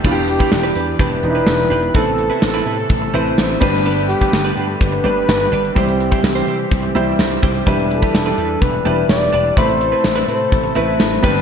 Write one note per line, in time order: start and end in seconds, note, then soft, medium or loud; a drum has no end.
0.04 0.39 E1 loud
0.04 1.93 E3 medium
0.04 0.70 E3 medium
0.04 0.70 B3 medium
0.04 0.20 D4 medium
0.04 1.93 D4 medium
0.04 0.70 D4 medium
0.04 0.11 F4 medium
0.04 1.93 G4 medium
0.04 0.16 G4 medium
0.04 0.15 B4 medium
0.04 kick medium
0.04 crash medium
0.11 0.73 G4 loud
0.16 muted clean electric guitar stroke soft
0.28 0.73 G4 loud
0.28 muted clean electric guitar stroke soft
0.28 closed hi-hat medium
0.39 0.51 D4 soft
0.39 0.51 G4 medium
0.39 0.51 B4 medium
0.39 kick medium
0.52 0.69 E1 loud
0.52 muted clean electric guitar stroke soft
0.52 snare loud
0.52 closed hi-hat loud
0.52 tambourine medium
0.63 0.74 D4 medium
0.63 0.75 G4 medium
0.63 0.76 B4 medium
0.75 0.93 E2 medium
0.75 0.88 D4 medium
0.75 0.87 G4 medium
0.75 0.86 B4 medium
0.75 closed hi-hat medium
0.87 muted clean electric guitar stroke medium
0.99 1.17 E1 loud
0.99 1.15 D4 medium
0.99 1.11 G4 medium
0.99 1.98 B4 loud
0.99 1.10 B4 medium
0.99 kick medium
0.99 closed hi-hat medium
1.11 muted clean electric guitar stroke soft
1.23 1.40 E1 medium
1.23 1.72 E3 medium
1.23 1.72 B3 medium
1.23 1.73 D4 medium
1.23 1.30 D#4 medium
1.23 muted clean electric guitar stroke soft
1.23 closed hi-hat medium
1.30 1.76 E4 medium
1.35 1.48 D4 medium
1.35 1.48 G4 medium
1.35 1.47 B4 medium
1.47 1.64 E1 loud
1.47 snare loud
1.47 closed hi-hat medium
1.47 tambourine medium
1.59 muted clean electric guitar stroke soft
1.70 1.88 E1 medium
1.70 1.86 D4 medium
1.70 1.83 G4 medium
1.70 1.82 B4 medium
1.70 closed hi-hat medium
1.83 muted clean electric guitar stroke soft
1.83 closed hi-hat medium
1.94 2.29 A1 loud
1.94 3.60 C3 medium
1.94 2.60 E3 medium
1.94 5.73 A3 medium
1.94 2.60 B3 medium
1.94 2.10 C4 medium
1.94 2.60 C4 medium
1.94 2.07 E4 medium
1.94 2.61 A4 medium
1.94 3.61 A4 medium
1.94 2.43 A4 loud
1.94 2.05 B4 medium
1.94 kick loud
1.94 closed hi-hat medium
2.06 muted clean electric guitar stroke soft
2.18 muted clean electric guitar stroke soft
2.18 closed hi-hat medium
2.30 2.41 C4 soft
2.30 2.41 E4 medium
2.30 2.42 B4 medium
2.42 2.59 A1 medium
2.42 2.88 A4 medium
2.42 muted clean electric guitar stroke soft
2.42 snare loud
2.42 closed hi-hat loud
2.42 tambourine medium
2.54 2.65 C4 medium
2.54 2.65 E4 medium
2.54 2.66 B4 medium
2.66 2.83 A2 medium
2.66 2.78 C4 medium
2.66 2.78 E4 medium
2.66 2.77 B4 medium
2.66 closed hi-hat medium
2.79 muted clean electric guitar stroke medium
2.90 3.07 A1 loud
2.90 kick medium
2.90 closed hi-hat medium
3.02 muted clean electric guitar stroke medium
3.13 3.31 A1 medium
3.13 3.61 E3 medium
3.13 3.29 C4 medium
3.13 3.62 C4 medium
3.13 3.26 E4 medium
3.13 3.60 B4 medium
3.13 3.25 B4 medium
3.13 3.62 C5 medium
3.13 closed hi-hat medium
3.26 muted clean electric guitar stroke soft
3.38 3.55 A1 loud
3.38 snare loud
3.38 closed hi-hat medium
3.38 tambourine medium
3.49 muted clean electric guitar stroke soft
3.60 4.13 G1 loud
3.60 5.74 D3 medium
3.60 4.37 G3 loud
3.60 4.38 B3 medium
3.60 3.77 D4 medium
3.60 4.38 D4 medium
3.60 9.53 G4 medium
3.60 3.73 G4 medium
3.60 4.38 B4 loud
3.60 3.72 B4 medium
3.60 kick loud
3.60 crash medium
3.73 muted clean electric guitar stroke soft
3.85 4.01 D4 medium
3.85 3.97 G4 medium
3.85 3.96 B4 loud
3.85 closed hi-hat medium
3.97 muted clean electric guitar stroke medium
4.09 4.54 G4 loud
4.09 muted clean electric guitar stroke soft
4.09 closed hi-hat medium
4.21 4.32 D4 soft
4.21 4.32 G4 soft
4.21 4.33 B4 medium
4.21 kick medium
4.33 4.50 G1 medium
4.33 muted clean electric guitar stroke soft
4.33 snare loud
4.33 closed hi-hat loud
4.33 tambourine medium
4.45 4.55 D4 medium
4.45 4.56 G4 medium
4.45 4.57 B4 medium
4.57 4.74 G2 medium
4.57 4.69 D4 medium
4.57 4.69 G4 medium
4.57 4.67 B4 medium
4.57 closed hi-hat medium
4.69 muted clean electric guitar stroke soft
4.81 4.98 G1 loud
4.81 5.72 B4 loud
4.81 kick medium
4.81 closed hi-hat medium
4.92 muted clean electric guitar stroke medium
5.04 5.22 G1 loud
5.04 5.53 G3 medium
5.04 5.53 B3 medium
5.04 5.20 D4 medium
5.04 5.53 D4 medium
5.04 5.16 G4 medium
5.04 5.54 B4 medium
5.04 5.15 B4 medium
5.04 closed hi-hat medium
5.16 muted clean electric guitar stroke soft
5.28 5.45 G1 medium
5.28 snare loud
5.28 closed hi-hat medium
5.28 tambourine medium
5.40 muted clean electric guitar stroke medium
5.52 5.69 G1 loud
5.52 5.67 D4 medium
5.52 5.64 G4 medium
5.52 5.63 B4 medium
5.52 closed hi-hat medium
5.64 muted clean electric guitar stroke medium
5.64 closed hi-hat medium
5.75 6.10 C2 loud
5.75 7.65 E3 medium
5.75 6.41 G3 medium
5.75 6.41 C4 medium
5.75 7.65 C4 medium
5.75 6.41 E4 medium
5.75 5.91 E4 medium
5.75 6.20 G4 medium
5.75 5.88 G4 medium
5.75 6.41 C5 medium
5.75 5.87 C5 medium
5.75 kick medium
5.75 closed hi-hat medium
5.89 muted clean electric guitar stroke soft
5.89 closed hi-hat medium
6.00 muted clean electric guitar stroke soft
6.00 closed hi-hat medium
6.12 6.23 E4 medium
6.12 6.23 G4 medium
6.12 6.24 C5 medium
6.12 kick medium
6.23 6.41 C2 loud
6.23 6.68 G4 medium
6.23 muted clean electric guitar stroke soft
6.23 snare loud
6.23 closed hi-hat loud
6.23 tambourine medium
6.35 6.46 E4 medium
6.35 6.47 G4 medium
6.35 6.47 C5 medium
6.47 6.64 C3 medium
6.47 6.59 E4 medium
6.47 6.59 G4 medium
6.47 6.58 C5 medium
6.47 closed hi-hat medium
6.59 muted clean electric guitar stroke soft
6.72 6.89 C2 medium
6.72 kick medium
6.72 closed hi-hat medium
6.83 muted clean electric guitar stroke soft
6.95 7.12 C2 medium
6.95 7.44 G3 medium
6.95 7.44 C4 medium
6.95 7.10 E4 medium
6.95 7.44 E4 medium
6.95 7.07 G4 medium
6.95 7.44 C5 medium
6.95 7.06 C5 medium
6.95 closed hi-hat medium
7.07 muted clean electric guitar stroke soft
7.19 7.36 C2 loud
7.19 snare loud
7.19 closed hi-hat medium
7.19 tambourine medium
7.31 muted clean electric guitar stroke soft
7.43 7.60 C2 medium
7.43 7.58 E4 medium
7.43 7.54 G4 medium
7.43 7.53 C5 medium
7.43 kick medium
7.43 open hi-hat medium
7.54 muted clean electric guitar stroke medium
7.54 closed hi-hat medium
7.66 8.01 E1 loud
7.66 9.55 E3 medium
7.66 8.32 G3 medium
7.66 9.55 D4 medium
7.66 7.82 D4 medium
7.66 8.32 D4 medium
7.66 8.32 E4 medium
7.66 7.78 G4 medium
7.66 7.77 B4 loud
7.66 8.32 B4 medium
7.66 kick loud
7.66 closed hi-hat medium
7.78 muted clean electric guitar stroke soft
7.78 closed hi-hat medium
7.90 8.63 A4 loud
7.90 muted clean electric guitar stroke soft
7.90 closed hi-hat medium
8.02 8.13 D4 medium
8.02 8.14 G4 medium
8.02 8.14 B4 medium
8.02 kick medium
8.14 8.31 E1 loud
8.14 muted clean electric guitar stroke soft
8.14 snare loud
8.14 closed hi-hat loud
8.14 tambourine medium
8.26 8.37 D4 medium
8.26 8.38 G4 medium
8.26 8.38 B4 medium
8.38 8.55 E2 loud
8.38 8.50 D4 medium
8.38 8.50 G4 medium
8.38 8.49 B4 medium
8.38 closed hi-hat medium
8.50 muted clean electric guitar stroke soft
8.62 8.79 E1 loud
8.62 9.08 B4 loud
8.62 kick loud
8.62 closed hi-hat medium
8.74 muted clean electric guitar stroke soft
8.85 9.03 E1 medium
8.85 9.34 G3 medium
8.85 9.01 D4 medium
8.85 9.34 D4 medium
8.85 9.35 E4 medium
8.85 8.98 G4 medium
8.85 9.35 B4 medium
8.85 8.97 B4 medium
8.85 closed hi-hat medium
8.98 muted clean electric guitar stroke soft
9.09 9.27 E1 loud
9.09 9.58 D5 loud
9.09 snare loud
9.09 closed hi-hat medium
9.09 tambourine medium
9.21 muted clean electric guitar stroke soft
9.33 9.50 E1 loud
9.33 9.48 D4 medium
9.33 9.44 G4 medium
9.33 9.43 B4 medium
9.33 closed hi-hat medium
9.45 muted clean electric guitar stroke medium
9.57 9.91 A1 loud
9.57 11.22 C3 medium
9.57 11.42 A3 medium
9.57 10.22 A3 medium
9.57 9.72 C4 medium
9.57 10.22 C4 medium
9.57 9.68 E4 medium
9.57 10.23 E4 medium
9.57 11.22 A4 medium
9.57 9.68 B4 medium
9.57 10.27 C5 loud
9.57 10.23 B5 medium
9.57 kick loud
9.57 closed hi-hat medium
9.69 muted clean electric guitar stroke soft
9.69 closed hi-hat medium
9.80 muted clean electric guitar stroke soft
9.80 closed hi-hat medium
9.92 10.03 C4 medium
9.92 10.03 E4 medium
9.92 10.04 B4 medium
10.04 10.22 A1 loud
10.04 muted clean electric guitar stroke soft
10.04 snare loud
10.04 closed hi-hat loud
10.04 tambourine medium
10.16 10.26 C4 medium
10.16 10.27 E4 medium
10.16 10.28 B4 medium
10.27 10.45 A2 loud
10.27 10.40 C4 medium
10.27 10.40 E4 medium
10.27 10.39 B4 medium
10.27 10.72 C5 medium
10.27 closed hi-hat medium
10.40 muted clean electric guitar stroke soft
10.51 10.69 A1 loud
10.51 muted clean electric guitar stroke soft
10.51 kick loud
10.51 closed hi-hat medium
10.64 muted clean electric guitar stroke medium
10.75 10.93 A1 loud
10.75 11.23 A3 medium
10.75 10.88 C4 medium
10.75 11.23 C4 medium
10.75 11.23 E4 medium
10.75 10.87 E4 medium
10.75 11.22 B4 medium
10.75 10.86 B4 loud
10.75 closed hi-hat medium
10.88 11.00 C4 medium
10.88 11.00 E4 medium
10.88 11.00 B4 medium
11.00 11.17 A1 loud
11.00 snare loud
11.00 closed hi-hat medium
11.00 tambourine medium
11.11 muted clean electric guitar stroke medium
11.23 11.42 G1 loud
11.23 11.42 D3 medium
11.23 11.42 G3 loud
11.23 11.42 B3 medium
11.23 11.42 D4 medium
11.23 11.39 D4 medium
11.23 11.42 G4 medium
11.23 11.35 G4 medium
11.23 11.42 B4 loud
11.23 11.34 B4 medium
11.23 kick loud
11.23 crash medium
11.35 muted clean electric guitar stroke medium